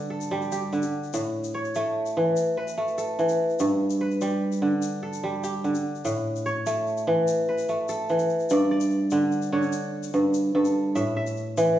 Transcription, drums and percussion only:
0.21 shaker
0.42 shaker
0.52 shaker
0.72 shaker
0.82 shaker
1.03 shaker
1.13 shaker
1.44 shaker
1.65 shaker
1.75 shaker
2.06 shaker
2.36 shaker
2.68 shaker
2.88 shaker
2.98 shaker
3.19 shaker
3.29 shaker
3.49 shaker
3.59 shaker
3.90 shaker
4.11 shaker
4.21 shaker
4.52 shaker
4.82 shaker
5.13 shaker
5.44 shaker
5.64 shaker
5.75 shaker
5.95 shaker
6.05 shaker
6.16 shaker
6.36 shaker
6.46 shaker
6.66 shaker
6.87 shaker
6.97 shaker
7.27 shaker
7.58 shaker
7.68 shaker
7.88 shaker
8.09 shaker
8.19 shaker
8.29 shaker
8.40 shaker
8.50 shaker
8.80 shaker
8.91 shaker
9.11 shaker
9.32 shaker
9.42 shaker
9.62 shaker
9.72 shaker
10.03 shaker
10.13 shaker
10.34 shaker
10.65 shaker
10.96 shaker
11.27 shaker
11.37 shaker
11.57 shaker

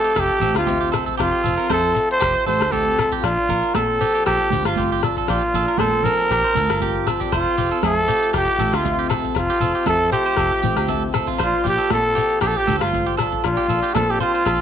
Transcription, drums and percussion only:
0.04 closed hi-hat, shekere
0.15 kick, cross-stick, closed hi-hat, muted conga, low agogo, shekere
0.41 closed hi-hat, muted conga, high conga, shekere
0.56 cross-stick, closed hi-hat, low agogo
0.67 kick, closed hi-hat, high conga, shekere
0.93 cross-stick, closed hi-hat, muted conga, low agogo, shekere
1.07 kick, closed hi-hat
1.19 kick, cross-stick, closed hi-hat, muted conga, low agogo, shekere
1.46 closed hi-hat, shekere
1.59 closed hi-hat
1.70 kick, cross-stick, closed hi-hat, high conga, low conga, low agogo, shekere
1.96 closed hi-hat, shekere
2.10 closed hi-hat, shekere
2.21 kick, cross-stick, closed hi-hat, muted conga, low agogo, shekere
2.48 closed hi-hat, muted conga, high conga
2.60 cross-stick, closed hi-hat, low agogo
2.73 kick, closed hi-hat, high conga, shekere
2.99 cross-stick, closed hi-hat, muted conga, low agogo, shekere
3.12 kick, closed hi-hat
3.24 kick, cross-stick, closed hi-hat, muted conga, low agogo, shekere
3.49 closed hi-hat, shekere
3.63 closed hi-hat
3.75 kick, cross-stick, closed hi-hat, high conga, low agogo, shekere
4.01 closed hi-hat, shekere
4.15 closed hi-hat, shekere
4.25 kick, cross-stick, closed hi-hat, muted conga, low agogo, shekere
4.50 closed hi-hat, muted conga, high conga, shekere
4.65 cross-stick, closed hi-hat, low agogo
4.76 kick, closed hi-hat, high conga, shekere
5.01 cross-stick, closed hi-hat, muted conga, low agogo, shekere
5.17 kick, closed hi-hat
5.27 kick, cross-stick, closed hi-hat, muted conga, low agogo, shekere
5.54 closed hi-hat, shekere
5.68 closed hi-hat, shekere
5.78 kick, cross-stick, closed hi-hat, high conga, low conga, low agogo, shekere
6.03 closed hi-hat, low conga, shekere
6.19 closed hi-hat, shekere
6.29 kick, cross-stick, closed hi-hat, muted conga, low agogo, shekere
6.55 closed hi-hat, muted conga, high conga, shekere
6.70 cross-stick, closed hi-hat, low agogo
6.80 kick, closed hi-hat, high conga, shekere
7.06 cross-stick, closed hi-hat, muted conga, low agogo, shekere
7.21 kick, closed hi-hat, shekere
7.32 kick, cross-stick, closed hi-hat, crash, muted conga, low agogo, shekere
7.58 closed hi-hat, shekere
7.71 closed hi-hat
7.83 kick, cross-stick, closed hi-hat, high conga, low agogo, shekere
8.08 closed hi-hat, shekere
8.23 closed hi-hat, shekere
8.34 kick, cross-stick, closed hi-hat, muted conga, low agogo, shekere
8.59 closed hi-hat, muted conga, high conga, shekere
8.74 cross-stick, closed hi-hat, low agogo
8.85 kick, closed hi-hat, high conga, shekere
9.10 cross-stick, closed hi-hat, muted conga, low agogo, shekere
9.24 kick, closed hi-hat
9.35 kick, cross-stick, closed hi-hat, muted conga, low agogo, shekere
9.61 closed hi-hat, shekere
9.75 closed hi-hat
9.86 kick, cross-stick, closed hi-hat, high conga, low conga, low agogo, shekere
10.12 closed hi-hat, shekere
10.26 closed hi-hat, shekere
10.37 kick, cross-stick, closed hi-hat, muted conga, low agogo, shekere
10.63 closed hi-hat, muted conga, high conga, shekere
10.77 cross-stick, closed hi-hat, low agogo
10.88 kick, closed hi-hat, high conga, shekere
11.14 cross-stick, closed hi-hat, muted conga, low agogo, shekere
11.27 kick, closed hi-hat
11.38 kick, cross-stick, closed hi-hat, muted conga, low agogo, shekere
11.65 closed hi-hat, shekere
11.78 closed hi-hat
11.90 kick, cross-stick, closed hi-hat, high conga, low agogo, shekere
12.17 closed hi-hat, shekere
12.30 closed hi-hat, shekere
12.41 kick, cross-stick, closed hi-hat, muted conga, low agogo, shekere
12.68 closed hi-hat, muted conga, high conga, shekere
12.81 cross-stick, closed hi-hat, low agogo
12.93 kick, closed hi-hat, high conga, shekere
13.18 cross-stick, closed hi-hat, muted conga, low agogo, shekere
13.32 kick, closed hi-hat
13.44 kick, cross-stick, closed hi-hat, muted conga, low agogo, shekere
13.70 closed hi-hat, shekere
13.84 closed hi-hat
13.95 kick, cross-stick, closed hi-hat, high conga, low conga, low agogo, shekere
14.20 closed hi-hat, shekere
14.34 closed hi-hat, shekere
14.46 kick, cross-stick, closed hi-hat, muted conga, low agogo, shekere

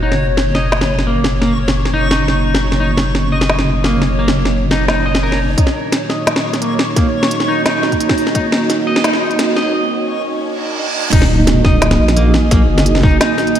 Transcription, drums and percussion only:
0.12 snare
0.37 snare
0.55 snare
0.72 snare
0.81 snare
0.99 snare
1.24 snare
1.42 snare
1.68 snare
1.85 snare
2.11 snare
2.28 snare
2.55 snare
2.72 snare
2.97 snare
3.15 snare
3.41 snare
3.50 snare
3.59 snare
3.84 snare
4.02 snare
4.28 snare
4.45 snare
4.71 snare
4.88 snare
5.15 snare
5.32 snare
5.58 kick, closed hi-hat
5.67 snare
5.92 snare, closed hi-hat
6.10 snare
6.27 snare, closed hi-hat
6.36 snare
6.53 snare, closed hi-hat
6.62 closed hi-hat
6.79 snare
6.96 kick, snare, closed hi-hat
7.23 snare
7.31 closed hi-hat
7.40 snare
7.66 snare, closed hi-hat
7.83 snare
7.92 kick, closed hi-hat
8.00 closed hi-hat
8.09 kick, snare
8.18 open hi-hat
8.27 snare
8.35 kick, closed hi-hat
8.52 snare
8.70 snare, closed hi-hat
8.96 snare
9.04 snare, closed hi-hat
9.13 snare
9.31 closed hi-hat
9.39 snare, closed hi-hat
9.56 snare
11.13 kick, closed hi-hat, crash
11.22 snare
11.47 snare, closed hi-hat
11.65 kick, snare
11.82 snare, closed hi-hat
11.91 snare
12.08 snare, closed hi-hat
12.17 closed hi-hat
12.34 snare
12.51 kick, snare, closed hi-hat
12.78 snare, open hi-hat
12.86 closed hi-hat
12.95 snare
12.97 snare
13.01 snare
13.03 kick, snare
13.06 snare
13.09 snare
13.21 snare, closed hi-hat
13.38 snare, open hi-hat
13.47 closed hi-hat
13.55 closed hi-hat

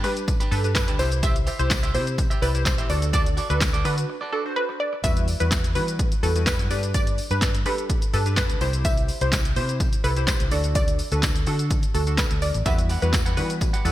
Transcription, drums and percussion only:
0.04 open hi-hat, tambourine, shaker
0.17 closed hi-hat, shaker
0.28 kick, closed hi-hat, tambourine, shaker
0.41 closed hi-hat, shaker
0.52 open hi-hat, tambourine, shaker
0.64 closed hi-hat, shaker
0.75 kick, snare, clap, closed hi-hat, tambourine, shaker
0.88 closed hi-hat, shaker
0.99 open hi-hat, tambourine, shaker
1.12 closed hi-hat, shaker
1.23 kick, closed hi-hat, tambourine, shaker
1.36 closed hi-hat, shaker
1.47 open hi-hat, tambourine, shaker
1.59 closed hi-hat, shaker
1.70 kick, snare, clap, closed hi-hat, tambourine, shaker
1.83 closed hi-hat, shaker
1.95 open hi-hat, tambourine, shaker
2.07 closed hi-hat, shaker
2.18 kick, closed hi-hat, tambourine, shaker
2.31 closed hi-hat, shaker
2.42 open hi-hat, tambourine, shaker
2.55 closed hi-hat, shaker
2.65 kick, snare, clap, closed hi-hat, tambourine, shaker
2.78 closed hi-hat, shaker
2.89 open hi-hat, tambourine, shaker
3.02 closed hi-hat, shaker
3.13 kick, closed hi-hat, tambourine, shaker
3.26 closed hi-hat, shaker
3.37 open hi-hat, tambourine, shaker
3.50 closed hi-hat, shaker
3.60 kick, snare, clap, closed hi-hat, tambourine, shaker
3.74 closed hi-hat, shaker
3.85 open hi-hat, shaker
3.98 closed hi-hat, shaker
5.04 kick, closed hi-hat, tambourine, shaker
5.17 closed hi-hat, shaker
5.28 open hi-hat, tambourine, shaker
5.40 closed hi-hat, shaker
5.51 kick, snare, clap, closed hi-hat, tambourine, shaker
5.64 closed hi-hat, shaker
5.75 open hi-hat, tambourine, shaker
5.88 closed hi-hat, shaker
5.99 kick, closed hi-hat, shaker
6.12 closed hi-hat, shaker
6.23 open hi-hat, tambourine, shaker
6.36 closed hi-hat, shaker
6.46 kick, snare, clap, closed hi-hat, tambourine, shaker
6.59 closed hi-hat, shaker
6.71 open hi-hat, tambourine, shaker
6.83 closed hi-hat, shaker
6.94 kick, closed hi-hat, tambourine, shaker
7.07 closed hi-hat, shaker
7.18 open hi-hat, tambourine, shaker
7.31 closed hi-hat, shaker
7.41 kick, snare, clap, closed hi-hat, tambourine, shaker
7.55 closed hi-hat, shaker
7.66 open hi-hat, shaker
7.78 closed hi-hat, shaker
7.90 kick, closed hi-hat, shaker
8.02 closed hi-hat, shaker
8.14 open hi-hat, tambourine, shaker
8.26 closed hi-hat, shaker
8.36 kick, snare, clap, closed hi-hat, tambourine, shaker
8.50 closed hi-hat, shaker
8.61 open hi-hat, tambourine, shaker
8.73 closed hi-hat, shaker
8.85 kick, closed hi-hat, tambourine, shaker
8.97 closed hi-hat, shaker
9.09 open hi-hat, tambourine, shaker
9.21 closed hi-hat, shaker
9.32 kick, snare, clap, closed hi-hat, tambourine, shaker
9.45 closed hi-hat, shaker
9.56 open hi-hat, shaker
9.69 closed hi-hat, shaker
9.80 kick, closed hi-hat, tambourine, shaker
9.93 closed hi-hat, shaker
10.04 open hi-hat, tambourine, shaker
10.17 closed hi-hat, shaker
10.27 kick, snare, clap, closed hi-hat, tambourine, shaker
10.40 closed hi-hat, shaker
10.51 open hi-hat, tambourine, shaker
10.64 closed hi-hat, shaker
10.75 kick, closed hi-hat, tambourine, shaker
10.88 closed hi-hat, shaker
10.99 open hi-hat, tambourine, shaker
11.12 closed hi-hat, shaker
11.22 kick, snare, clap, closed hi-hat, tambourine, shaker
11.36 closed hi-hat, shaker
11.47 open hi-hat, tambourine, shaker
11.59 closed hi-hat, shaker
11.71 kick, closed hi-hat, tambourine, shaker
11.83 closed hi-hat, shaker
11.95 open hi-hat, tambourine, shaker
12.07 closed hi-hat, shaker
12.17 kick, snare, clap, closed hi-hat, tambourine, shaker
12.31 closed hi-hat, shaker
12.42 open hi-hat, tambourine, shaker
12.54 closed hi-hat, shaker
12.66 kick, closed hi-hat, tambourine, shaker
12.79 closed hi-hat, shaker
12.90 open hi-hat, tambourine, shaker
13.02 closed hi-hat, shaker
13.13 kick, snare, clap, closed hi-hat, tambourine, shaker
13.26 closed hi-hat, shaker
13.37 open hi-hat, tambourine, shaker
13.50 closed hi-hat, shaker
13.61 kick, closed hi-hat, tambourine, shaker
13.74 closed hi-hat, shaker
13.85 open hi-hat, tambourine, shaker

